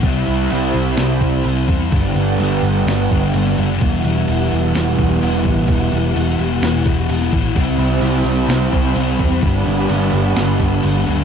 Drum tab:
CC |x-x-x-x-x-x-x-x-|x-x-x-x-x-x-x-x-|x-x-x-x-x-x-x-x-|x-x-x-x-x-x-x-x-|
SD |--------o-------|--------o----o--|--------o----o--|--------o----o--|
BD |o---------o---o-|o---------o-----|o---------o---o-|o---------o---o-|

CC |x-x-x-x-x-x-x-x-|x-x-x-x-x-x-x-x-|
SD |--------o-------|--------o-------|
BD |o---------o---o-|o---------o-----|